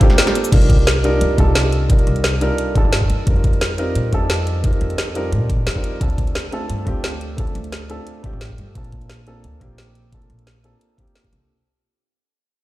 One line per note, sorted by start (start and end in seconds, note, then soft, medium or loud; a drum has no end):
0.00 0.55 A#3 loud
0.00 0.55 C4 medium
0.00 0.52 D4 medium
0.00 0.02 F4 medium
0.00 0.51 F4 medium
0.00 0.03 G4 loud
0.00 0.51 G4 loud
0.00 0.55 A4 loud
0.00 kick loud
0.00 closed hi-hat medium
0.10 snare soft
0.10 closed hi-hat soft
0.18 snare loud
0.18 closed hi-hat loud
0.18 shaker medium
0.27 snare soft
0.27 closed hi-hat soft
0.35 closed hi-hat medium
0.35 shaker soft
0.44 shaker medium
0.51 1.20 C2 medium
0.51 1.01 G3 medium
0.51 1.02 D4 medium
0.51 1.02 D#4 medium
0.51 1.02 F4 medium
0.51 1.03 A#4 medium
0.51 kick loud
0.51 closed hi-hat medium
0.51 crash medium
0.62 closed hi-hat soft
0.69 kick loud
0.69 closed hi-hat medium
0.79 closed hi-hat soft
0.87 snare loud
0.87 closed hi-hat medium
1.03 1.16 G3 medium
1.03 1.16 D4 medium
1.03 1.16 D#4 medium
1.03 1.16 F4 medium
1.03 1.17 A#4 loud
1.03 closed hi-hat medium
1.21 1.37 F2 medium
1.21 closed hi-hat loud
1.37 2.05 C2 loud
1.37 1.87 G3 medium
1.37 1.87 D4 medium
1.37 1.88 D#4 medium
1.37 1.88 F4 medium
1.37 1.88 A4 loud
1.37 kick medium
1.37 closed hi-hat medium
1.55 snare loud
1.55 closed hi-hat medium
1.73 closed hi-hat medium
1.88 2.38 G3 medium
1.88 2.39 D4 medium
1.88 2.39 D#4 medium
1.88 2.40 F4 medium
1.88 2.40 A#4 medium
1.88 kick loud
1.88 closed hi-hat medium
1.99 closed hi-hat soft
2.07 2.49 C2 medium
2.07 closed hi-hat medium
2.16 closed hi-hat soft
2.24 snare loud
2.24 closed hi-hat medium
2.41 2.53 G3 medium
2.41 2.53 D4 medium
2.41 2.53 D#4 medium
2.41 2.54 F4 medium
2.41 2.54 A#4 loud
2.41 closed hi-hat medium
2.58 closed hi-hat medium
2.74 3.24 G3 medium
2.74 3.25 D4 medium
2.74 3.25 D#4 medium
2.74 3.25 F4 medium
2.74 3.26 A4 loud
2.74 kick loud
2.74 closed hi-hat medium
2.85 3.08 G1 loud
2.93 snare loud
2.93 closed hi-hat medium
3.02 kick medium
3.10 3.25 F2 medium
3.10 closed hi-hat medium
3.26 3.94 F2 medium
3.26 3.76 G3 medium
3.26 3.76 C4 medium
3.26 3.76 D#4 medium
3.26 3.77 F4 medium
3.26 3.77 A#4 medium
3.26 kick loud
3.26 closed hi-hat medium
3.36 closed hi-hat soft
3.44 kick loud
3.44 closed hi-hat medium
3.53 closed hi-hat soft
3.61 snare loud
3.61 closed hi-hat medium
3.78 3.90 G3 medium
3.78 3.90 C4 medium
3.78 3.90 D#4 medium
3.78 3.91 F4 medium
3.78 3.91 A#4 loud
3.78 closed hi-hat medium
3.95 4.11 A#2 medium
3.95 closed hi-hat medium
4.11 4.80 F2 loud
4.11 4.61 G3 medium
4.11 4.62 C4 medium
4.11 4.62 D#4 medium
4.11 4.62 F4 medium
4.11 4.63 A4 loud
4.11 kick medium
4.11 closed hi-hat medium
4.30 snare loud
4.30 closed hi-hat medium
4.47 closed hi-hat medium
4.63 5.13 G3 medium
4.63 5.13 C4 medium
4.63 5.13 D#4 medium
4.63 5.14 F4 medium
4.63 5.14 A#4 medium
4.63 kick loud
4.63 closed hi-hat medium
4.73 closed hi-hat soft
4.81 5.34 F2 medium
4.81 closed hi-hat medium
4.90 closed hi-hat soft
4.98 snare loud
4.98 closed hi-hat medium
5.15 5.27 G3 medium
5.15 5.27 C4 medium
5.15 5.28 D#4 medium
5.15 5.28 F4 medium
5.15 5.28 A#4 loud
5.15 closed hi-hat medium
5.32 5.65 A#2 medium
5.32 closed hi-hat medium
5.50 kick loud
5.50 closed hi-hat medium
5.67 6.00 F2 medium
5.67 snare loud
5.67 closed hi-hat medium
5.75 5.99 G3 medium
5.75 5.99 C4 medium
5.75 5.99 D#4 medium
5.75 5.99 F4 medium
5.75 6.00 A#4 medium
5.75 kick medium
5.84 closed hi-hat medium
6.00 6.68 D2 medium
6.00 6.50 A3 medium
6.00 6.50 C4 medium
6.00 6.50 D4 medium
6.00 6.51 F4 medium
6.00 6.51 A4 medium
6.00 kick loud
6.00 closed hi-hat medium
6.10 closed hi-hat soft
6.18 kick loud
6.18 closed hi-hat medium
6.27 closed hi-hat soft
6.35 snare loud
6.35 closed hi-hat medium
6.52 6.64 A3 medium
6.52 6.64 C4 medium
6.52 6.65 D4 medium
6.52 6.65 F4 medium
6.52 6.65 A4 medium
6.52 closed hi-hat medium
6.69 6.85 G2 medium
6.69 closed hi-hat medium
6.85 7.54 D2 medium
6.85 7.35 A3 medium
6.85 7.36 C4 medium
6.85 7.36 D4 medium
6.85 7.37 F4 medium
6.85 7.37 G4 loud
6.85 kick medium
6.85 closed hi-hat medium
7.04 snare loud
7.04 closed hi-hat medium
7.21 closed hi-hat medium
7.37 7.87 A3 medium
7.37 7.87 C4 medium
7.37 7.88 D4 medium
7.37 7.88 F4 medium
7.37 7.88 A4 medium
7.37 kick loud
7.37 closed hi-hat medium
7.47 closed hi-hat soft
7.55 7.97 D2 medium
7.55 closed hi-hat medium
7.64 closed hi-hat soft
7.72 snare loud
7.72 closed hi-hat medium
7.89 8.02 A3 medium
7.89 8.02 C4 medium
7.89 8.02 D4 medium
7.89 8.02 F4 medium
7.89 8.02 A4 loud
7.89 closed hi-hat medium
8.07 closed hi-hat medium
8.23 8.73 A3 medium
8.23 8.73 C4 medium
8.23 8.73 D4 medium
8.23 8.74 F4 medium
8.23 8.74 G4 loud
8.23 kick loud
8.23 closed hi-hat medium
8.33 8.57 A1 medium
8.41 snare loud
8.41 closed hi-hat medium
8.50 kick medium
8.58 8.74 G2 medium
8.58 closed hi-hat medium
8.74 9.43 A#1 medium
8.74 9.24 A#3 medium
8.74 9.25 C4 medium
8.74 9.25 D4 medium
8.74 9.25 F4 medium
8.74 9.26 A4 medium
8.74 kick loud
8.74 closed hi-hat medium
8.84 closed hi-hat soft
8.92 kick medium
8.92 closed hi-hat medium
9.01 closed hi-hat soft
9.10 snare loud
9.10 closed hi-hat medium
9.26 9.39 A#3 medium
9.26 9.39 C4 medium
9.26 9.39 D4 medium
9.26 9.39 F4 medium
9.26 9.39 A4 medium
9.26 closed hi-hat medium
9.44 9.59 D2 medium
9.44 closed hi-hat medium
9.60 10.28 A#1 medium
9.60 10.10 A#3 medium
9.60 10.10 C4 medium
9.60 10.11 D4 medium
9.60 10.11 F4 medium
9.60 10.11 G4 loud
9.60 kick medium
9.60 closed hi-hat medium
9.78 snare loud
9.78 closed hi-hat medium
9.95 closed hi-hat medium
10.11 10.61 A#3 medium
10.11 10.62 C4 medium
10.11 10.62 D4 medium
10.11 10.62 F4 medium
10.11 10.63 A4 medium
10.11 kick loud
10.11 closed hi-hat medium
10.22 closed hi-hat soft
10.30 10.71 A#1 medium
10.30 closed hi-hat medium
10.39 closed hi-hat soft
10.47 snare loud
10.47 closed hi-hat medium
10.63 10.76 A#3 medium
10.63 10.76 C4 medium
10.63 10.76 D4 medium
10.63 10.76 F4 medium
10.63 10.77 A4 medium
10.63 closed hi-hat medium
10.81 closed hi-hat medium
10.97 11.47 A#3 medium
10.97 11.47 C4 medium
10.97 11.48 D4 medium
10.97 11.48 F4 medium
10.97 11.48 G4 loud
10.97 kick medium
10.97 closed hi-hat medium
11.07 closed hi-hat soft
11.15 snare loud
11.15 closed hi-hat medium
11.24 kick medium
11.24 closed hi-hat soft
11.32 11.48 C2 medium
11.32 closed hi-hat medium